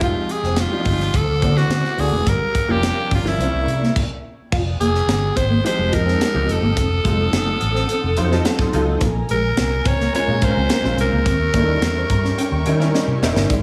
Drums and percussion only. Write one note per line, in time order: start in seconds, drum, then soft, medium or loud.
0.01 kick medium
0.01 closed hi-hat medium
0.29 closed hi-hat medium
0.44 snare soft
0.56 snare loud
0.56 closed hi-hat medium
0.85 kick medium
0.85 open hi-hat medium
1.00 snare soft
1.14 kick medium
1.14 closed hi-hat medium
1.42 kick medium
1.42 closed hi-hat medium
1.57 snare soft
1.70 snare loud
1.70 closed hi-hat medium
1.85 snare soft
1.98 open hi-hat medium
2.27 kick loud
2.27 closed hi-hat medium
2.55 kick medium
2.55 closed hi-hat medium
2.83 snare loud
2.83 closed hi-hat medium
3.11 kick medium
3.11 open hi-hat medium
3.26 snare soft
3.41 closed hi-hat medium
3.68 closed hi-hat medium
3.84 snare soft
3.96 kick loud
3.96 crash medium
4.52 kick loud
4.52 crash medium
4.81 closed hi-hat medium
4.95 snare soft
5.09 snare loud
5.09 closed hi-hat medium
5.37 kick medium
5.37 closed hi-hat medium
5.66 closed hi-hat loud
5.93 kick medium
5.93 closed hi-hat medium
6.08 snare soft
6.21 snare loud
6.21 closed hi-hat medium
6.49 closed hi-hat medium
6.77 kick loud
6.77 closed hi-hat medium
7.05 kick medium
7.05 closed hi-hat medium
7.33 snare loud
7.33 closed hi-hat medium
7.61 closed hi-hat medium
7.76 snare soft
7.89 closed hi-hat medium
8.17 closed hi-hat medium
8.32 snare soft
8.45 snare loud
8.45 closed hi-hat medium
8.59 kick loud
8.59 snare soft
8.73 closed hi-hat medium
9.01 kick loud
9.01 closed hi-hat medium
9.29 closed hi-hat medium
9.57 snare loud
9.57 closed hi-hat medium
9.85 kick medium
9.85 closed hi-hat medium
10.00 snare soft
10.15 closed hi-hat loud
10.42 kick medium
10.42 closed hi-hat medium
10.69 snare loud
10.69 closed hi-hat medium
10.85 snare soft
10.98 closed hi-hat medium
11.26 kick loud
11.26 closed hi-hat medium
11.54 kick medium
11.54 closed hi-hat medium
11.82 snare loud
11.82 closed hi-hat medium
12.10 kick medium
12.10 closed hi-hat medium
12.25 snare soft
12.38 closed hi-hat loud
12.66 closed hi-hat medium
12.81 snare soft
12.95 snare medium
13.23 snare medium
13.36 snare medium
13.50 kick loud
13.50 closed hi-hat medium